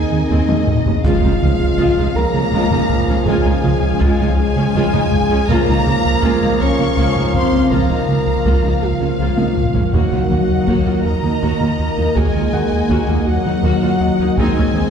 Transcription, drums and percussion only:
0.49 taiko high
0.67 taiko low-mid
0.86 taiko low
1.05 taiko
1.79 taiko
2.71 taiko low
2.90 taiko low
3.27 taiko
4.01 taiko
4.93 taiko low
5.12 taiko low
5.49 taiko
6.23 taiko
7.16 taiko low
7.34 taiko low
7.71 taiko
8.45 taiko
9.38 taiko high
9.56 taiko low-mid
9.75 taiko low
9.94 taiko
10.67 taiko
12.15 taiko
12.89 taiko
14.38 taiko

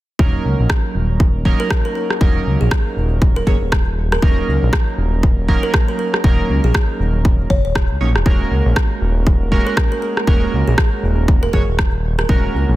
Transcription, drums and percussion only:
0.19 kick
0.70 kick, cross-stick
1.20 kick
1.45 kick
1.71 kick, cross-stick
2.10 cross-stick
2.21 kick
2.71 kick, cross-stick
3.22 kick
3.47 kick
3.72 kick, cross-stick
4.12 cross-stick
4.22 kick
4.73 kick, cross-stick
5.23 kick
5.48 kick
5.74 kick, cross-stick
6.14 cross-stick
6.24 kick
6.75 kick, cross-stick
7.25 kick
7.50 kick
7.75 kick, cross-stick
8.16 cross-stick
8.26 kick
8.76 kick, cross-stick
9.27 kick
9.52 kick
9.77 kick, cross-stick
10.17 cross-stick
10.27 kick
10.78 kick, cross-stick
11.28 kick
11.53 kick
11.79 kick, cross-stick
12.19 cross-stick
12.29 kick

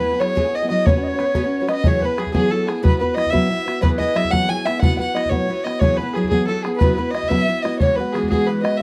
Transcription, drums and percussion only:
0.21 bodhran
0.37 bodhran
0.87 bodhran
1.19 bodhran
1.35 bodhran
1.69 bodhran
1.84 bodhran
2.02 bodhran
2.18 bodhran
2.26 bodhran
2.35 bodhran
2.69 bodhran
2.85 bodhran
3.02 bodhran
3.18 bodhran
3.26 bodhran
3.35 bodhran
3.68 bodhran
3.83 bodhran
4.00 bodhran
4.16 bodhran
4.25 bodhran
4.33 bodhran
4.67 bodhran
4.83 bodhran
5.00 bodhran
5.17 bodhran
5.26 bodhran
5.32 bodhran
5.67 bodhran
5.81 bodhran
5.98 bodhran
6.15 bodhran
6.24 bodhran
6.32 bodhran
6.65 bodhran
6.81 bodhran
6.99 bodhran
7.15 bodhran
7.23 bodhran
7.31 bodhran
7.65 bodhran
7.81 bodhran
7.98 bodhran
8.15 bodhran
8.23 bodhran
8.32 bodhran
8.65 bodhran

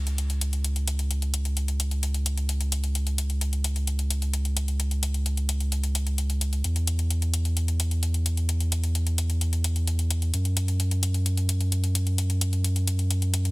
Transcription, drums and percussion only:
0.07 closed hi-hat
0.18 closed hi-hat
0.30 closed hi-hat
0.41 closed hi-hat
0.53 closed hi-hat
0.64 closed hi-hat
0.76 closed hi-hat
0.88 closed hi-hat
0.99 closed hi-hat
1.11 closed hi-hat
1.22 closed hi-hat
1.34 closed hi-hat
1.45 closed hi-hat
1.57 closed hi-hat
1.68 closed hi-hat
1.80 closed hi-hat
1.91 closed hi-hat
2.03 closed hi-hat
2.14 closed hi-hat
2.26 closed hi-hat
2.37 closed hi-hat
2.49 closed hi-hat
2.61 closed hi-hat
2.72 closed hi-hat
2.84 closed hi-hat
2.95 closed hi-hat
3.07 closed hi-hat
3.18 closed hi-hat
3.30 closed hi-hat
3.41 closed hi-hat
3.53 closed hi-hat
3.64 closed hi-hat
3.76 closed hi-hat
3.87 closed hi-hat
3.99 closed hi-hat
4.10 closed hi-hat
4.22 closed hi-hat
4.34 closed hi-hat
4.45 closed hi-hat
4.57 closed hi-hat
4.68 closed hi-hat
4.80 closed hi-hat
4.91 closed hi-hat
5.03 closed hi-hat
5.14 closed hi-hat
5.26 closed hi-hat
5.37 closed hi-hat
5.49 closed hi-hat
5.60 closed hi-hat
5.72 closed hi-hat
5.84 closed hi-hat
5.95 closed hi-hat
6.07 closed hi-hat
6.18 closed hi-hat
6.30 closed hi-hat
6.41 closed hi-hat
6.53 closed hi-hat
6.64 closed hi-hat
6.76 closed hi-hat
6.87 closed hi-hat
6.99 closed hi-hat
7.11 closed hi-hat
7.22 closed hi-hat
7.34 closed hi-hat
7.45 closed hi-hat
7.57 closed hi-hat
7.68 closed hi-hat
7.80 closed hi-hat
7.91 closed hi-hat
8.03 closed hi-hat
8.14 closed hi-hat
8.26 closed hi-hat
8.37 closed hi-hat
8.49 closed hi-hat
8.60 closed hi-hat
8.72 closed hi-hat
8.84 closed hi-hat
8.95 closed hi-hat
9.07 closed hi-hat
9.18 closed hi-hat
9.30 closed hi-hat
9.41 closed hi-hat
9.53 closed hi-hat
9.64 closed hi-hat
9.76 closed hi-hat
9.87 closed hi-hat
9.99 closed hi-hat
10.11 closed hi-hat
10.22 closed hi-hat
10.34 closed hi-hat
10.45 closed hi-hat
10.57 closed hi-hat
10.68 closed hi-hat
10.80 closed hi-hat
10.91 closed hi-hat
11.03 closed hi-hat
11.14 closed hi-hat
11.26 closed hi-hat
11.37 closed hi-hat
11.49 closed hi-hat
11.61 closed hi-hat
11.72 closed hi-hat
11.84 closed hi-hat
11.95 closed hi-hat
12.07 closed hi-hat
12.18 closed hi-hat
12.30 closed hi-hat
12.41 closed hi-hat
12.53 closed hi-hat
12.64 closed hi-hat
12.76 closed hi-hat
12.87 closed hi-hat
12.99 closed hi-hat
13.11 closed hi-hat
13.22 closed hi-hat
13.34 closed hi-hat
13.45 closed hi-hat

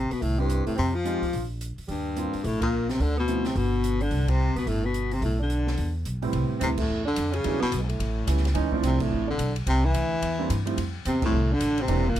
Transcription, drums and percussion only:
0.11 open hi-hat
0.22 open hi-hat
0.50 closed hi-hat
0.67 open hi-hat
0.78 open hi-hat
1.05 closed hi-hat
1.22 kick, open hi-hat
1.33 open hi-hat
1.61 closed hi-hat
1.78 open hi-hat
1.89 open hi-hat
2.17 closed hi-hat
2.34 open hi-hat
2.44 open hi-hat
2.61 kick, ride
2.89 snare, open hi-hat
3.00 open hi-hat
3.28 closed hi-hat
3.45 snare, open hi-hat
3.56 open hi-hat
3.84 closed hi-hat
4.01 open hi-hat
4.11 open hi-hat
4.28 kick, ride
4.56 open hi-hat
4.67 open hi-hat
4.94 closed hi-hat
5.12 open hi-hat
5.22 open hi-hat
5.50 closed hi-hat
5.67 snare
5.77 open hi-hat
6.05 closed hi-hat
6.22 open hi-hat
6.33 ride
6.61 hi-hat pedal, ride
6.78 kick, crash
7.16 hi-hat pedal, ride
7.33 ride
7.44 ride
7.61 snare
7.72 hi-hat pedal, ride
7.89 ride
8.00 ride
8.27 hi-hat pedal, ride
8.37 snare
8.45 snare, ride
8.55 ride
8.72 kick
8.83 hi-hat pedal, ride
9.00 kick, crash
9.39 hi-hat pedal, ride
9.56 ride
9.67 ride
9.94 hi-hat pedal, ride
10.22 ride
10.50 hi-hat pedal, ride
10.67 ride
10.78 ride
11.05 hi-hat pedal, ride
11.22 kick, crash
11.61 hi-hat pedal, ride
11.78 ride
11.88 ride
12.16 hi-hat pedal, ride

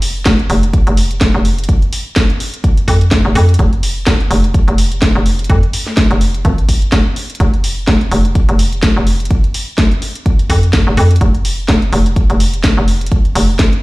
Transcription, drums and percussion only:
0.02 open hi-hat
0.26 kick, snare, closed hi-hat
0.39 closed hi-hat
0.50 open hi-hat
0.63 closed hi-hat
0.74 kick, closed hi-hat
0.87 closed hi-hat
0.97 open hi-hat
1.11 closed hi-hat
1.21 kick, snare, closed hi-hat
1.45 open hi-hat
1.58 closed hi-hat
1.64 closed hi-hat
1.69 kick, closed hi-hat
1.82 closed hi-hat
1.93 open hi-hat
2.16 kick, snare, closed hi-hat
2.30 closed hi-hat
2.40 open hi-hat
2.54 closed hi-hat
2.64 kick, closed hi-hat
2.77 closed hi-hat
2.88 kick, open hi-hat
3.01 closed hi-hat
3.11 kick, snare, closed hi-hat
3.35 open hi-hat
3.49 closed hi-hat
3.54 closed hi-hat
3.59 kick, closed hi-hat
3.73 closed hi-hat
3.83 open hi-hat
4.07 kick, snare, closed hi-hat
4.20 closed hi-hat
4.31 open hi-hat
4.44 closed hi-hat
4.54 kick, closed hi-hat
4.68 closed hi-hat
4.78 open hi-hat
4.92 closed hi-hat
5.02 kick, snare, closed hi-hat
5.26 open hi-hat
5.39 closed hi-hat
5.44 closed hi-hat
5.50 kick, closed hi-hat
5.63 closed hi-hat
5.73 open hi-hat
5.87 snare
5.97 kick, snare, closed hi-hat
6.11 closed hi-hat
6.21 open hi-hat
6.34 closed hi-hat
6.45 kick, closed hi-hat
6.58 closed hi-hat
6.69 kick, open hi-hat
6.82 closed hi-hat
6.92 kick, snare, closed hi-hat
7.16 open hi-hat
7.30 closed hi-hat
7.35 closed hi-hat
7.40 kick, closed hi-hat
7.54 closed hi-hat
7.64 open hi-hat
7.87 kick, snare, closed hi-hat
8.01 closed hi-hat
8.12 open hi-hat
8.25 closed hi-hat
8.35 kick, closed hi-hat
8.49 closed hi-hat
8.59 open hi-hat
8.72 closed hi-hat
8.83 kick, snare, closed hi-hat
9.07 open hi-hat
9.20 closed hi-hat
9.25 closed hi-hat
9.31 kick, closed hi-hat
9.44 closed hi-hat
9.54 open hi-hat
9.78 kick, snare, closed hi-hat
9.92 closed hi-hat
10.02 open hi-hat
10.15 closed hi-hat
10.26 kick, closed hi-hat
10.39 closed hi-hat
10.50 kick, open hi-hat
10.63 closed hi-hat
10.73 kick, snare, closed hi-hat
10.97 open hi-hat
11.11 closed hi-hat
11.16 closed hi-hat
11.21 kick, closed hi-hat
11.34 closed hi-hat
11.45 open hi-hat
11.68 kick, snare, closed hi-hat
11.82 closed hi-hat
11.93 open hi-hat
12.06 closed hi-hat
12.16 kick, closed hi-hat
12.30 closed hi-hat
12.40 open hi-hat
12.54 closed hi-hat
12.64 kick, snare, closed hi-hat
12.88 open hi-hat
13.01 closed hi-hat
13.06 closed hi-hat
13.12 kick, closed hi-hat
13.25 closed hi-hat
13.35 open hi-hat
13.59 kick, snare, closed hi-hat
13.73 closed hi-hat

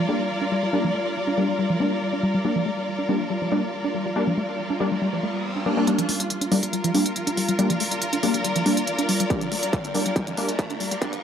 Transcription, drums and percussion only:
5.87 closed hi-hat
5.99 closed hi-hat
6.09 open hi-hat
6.20 closed hi-hat
6.30 closed hi-hat
6.41 closed hi-hat
6.52 open hi-hat
6.63 closed hi-hat
6.73 closed hi-hat
6.84 closed hi-hat
6.95 open hi-hat
7.06 closed hi-hat
7.16 closed hi-hat
7.27 closed hi-hat
7.37 open hi-hat
7.49 closed hi-hat
7.59 closed hi-hat
7.70 closed hi-hat
7.80 open hi-hat
7.91 closed hi-hat
8.02 closed hi-hat
8.13 closed hi-hat
8.23 open hi-hat
8.34 closed hi-hat
8.44 closed hi-hat
8.56 closed hi-hat
8.66 open hi-hat
8.77 closed hi-hat
8.87 closed hi-hat
8.99 closed hi-hat
9.09 open hi-hat
9.20 closed hi-hat
9.30 kick, closed hi-hat
9.41 closed hi-hat
9.52 open hi-hat
9.63 closed hi-hat
9.73 kick, closed hi-hat
9.84 closed hi-hat
9.95 open hi-hat
10.06 closed hi-hat
10.16 kick, closed hi-hat
10.27 closed hi-hat
10.37 open hi-hat
10.49 closed hi-hat
10.59 kick, closed hi-hat
10.70 closed hi-hat
10.80 open hi-hat
10.91 closed hi-hat
11.02 kick, closed hi-hat
11.13 closed hi-hat

